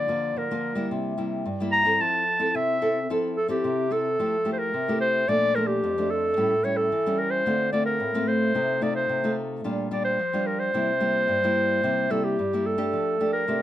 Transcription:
Already playing: D3 D5
0.08 F3 A#3 F4
0.36 D3 A#4
0.51 F3 A#3 F4
0.75 G3 A#3 E4
0.91 C3
1.18 G3 A#3 E4
1.46 G2
1.60 G3 A#3 E4
1.72 A#5
1.85 C4 E4 A4
2.01 F3 A5
2.39 C4 E4 A4
2.55 C3 E5
2.81 C4 E4 A4
3.10 F3 C4 E4 A4
3.37 A4
3.48 C4 E4 G4 A4
3.64 C3
3.91 C4 E4 A4
4.19 F3 A3 E4 G4
4.45 A3 E4 G4
4.53 C5
4.59 A#4
4.74 C3
4.88 A3 E4 G4
5.01 C5
5.28 A#2 F3 A3 D4 D5
5.55 F3 A3 D4 A#4
5.67 G4
5.84 F2
5.98 F3 A3 D4
6.11 A4
6.37 A2 G3 C#4 E4
6.64 G3 C#4 E4 C#5
6.77 A4
6.92 E3
7.06 G3 C#4 E4
7.19 A#4
7.31 C5
7.46 D3 A3 C4 F4
7.73 A3 C4 F4 D5
7.86 A#4
8.00 A2
8.14 A3 C4 F4
8.28 C5
8.55 C3 A3 D#4 F4
8.81 A3 D#4 F4 D5
8.96 C5
9.09 C3
9.24 A3 D#4 F4
9.64 A#2 G3 D4 F4
9.91 G3 D4 F4 D5
10.05 C5
10.19 F3
10.33 G3 D4 F4
10.47 A#4
10.60 C5
10.74 C3 G3 A#3 E4
11.00 G3 A#3 E4
11.28 G2
11.44 G3 A#3 E4
11.83 C3 G3 A#3 E4
12.10 G3 A#3 E4 A4
12.24 G4
12.39 G2
12.53 G3 A#3 E4
12.66 A4
12.78 A3 D4 G4
12.93 F3
13.20 A3 D4 G4
13.33 A#4
13.48 C3 A3 D4 G4

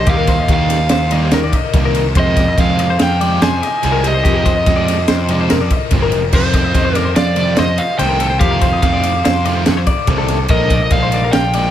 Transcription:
0.06 D#2 D#3 G3 A#3 D#4 G4 F5, kick, ride
0.17 A#4
0.27 C5, kick, ride
0.39 D#5
0.48 D#2 D#3 G3 A#3 D#4, kick, ride
0.54 F5
0.60 D5
0.70 snare, ride
0.89 D#2 C5, snare, ride
1.11 D#3 G3 A#3 D#4 D5, ride
1.23 C5
1.31 D#2 A#4, snare, ride
1.44 D5
1.53 D#5, kick, ride
1.74 C2 D#3 G3 A#3 D#4, kick, ride
1.85 A#4
1.95 ride
2.15 F2 C3 F3 G#3 C4 C5, kick, ride
2.19 D#5
2.37 D5, kick, snare, ride
2.48 D#5
2.58 F2 C3 F3 G#3 C4 F5, kick, ride
2.69 C5
2.79 D5, ride
2.90 C5
2.99 F2 F5 G5, snare, ride
3.21 C3 F3 G#3 C4 D5, ride
3.42 F2 C5 G#5, snare, ride
3.62 D#5, snare, ride
3.83 C2 C3 F3 G#3 C4 C5, ride
3.92 A#4
4.04 G4 D#5, ride
4.14 C5
4.23 F2 C3 F3 G#3 C4 G4, kick, ride
4.35 A#4
4.46 C5, kick, ride
4.56 D#5
4.66 F2 C3 F3 G#3 C4, kick, snare, ride
4.76 D5
4.88 snare, ride
5.08 F2 C5, snare, ride
5.29 C3 F3 G#3 C4 D5, ride
5.41 C5
5.50 F2 A#4, snare, ride
5.61 D5
5.70 D#5, kick, ride
5.91 G1 C3 F3 G#3 C4, kick, snare, ride
6.02 A#4
6.12 F1, ride
6.33 F2 C3 D#3 A3 C4 C5, kick, crash
6.54 D5, kick, snare, ride
6.65 D#5
6.75 F2 C3 D#3 A3 C4, kick, snare, ride
6.85 C5
6.95 A#4 D5, snare, ride
7.05 C5
7.16 F2 D5 F5, snare, ride
7.36 C3 D#3 A3 C4 D5, ride
7.56 F2 C5 D#5, snare, ride
7.78 D#5 F5, ride
7.99 C2 C3 D#3 A3 C4 C5 G5, snare, ride
8.09 A#4
8.20 A4, ride
8.30 C5
8.40 F2 C3 D#3 A3 C4 G4 F5, kick, ride
8.51 A#4
8.61 C5, kick, ride
8.73 D#5
8.82 F2 C3 D#3 A3 C4 F5, kick, ride
8.94 D5
9.03 ride
9.25 F2 C5, snare, ride
9.45 C3 D#3 A3 C4 D5, ride
9.55 C5
9.66 F2 A4, snare, ride
9.77 C5
9.87 D5, kick, ride
10.07 C2 C3 D#3 A3 C4, kick, ride
10.18 A4
10.28 snare, ride
10.48 A#1 A#2 F3 G#3 D4 A#4 D#5, kick, ride
10.70 D5, kick, ride
10.82 D#5
10.90 A#1 A#2 F3 G#3 D4 F5, kick, ride
11.03 C5
11.12 D5, ride
11.24 A#4
11.33 A#1 F5 G5, snare, ride
11.53 A#2 F3 G#3 D4 D5, ride

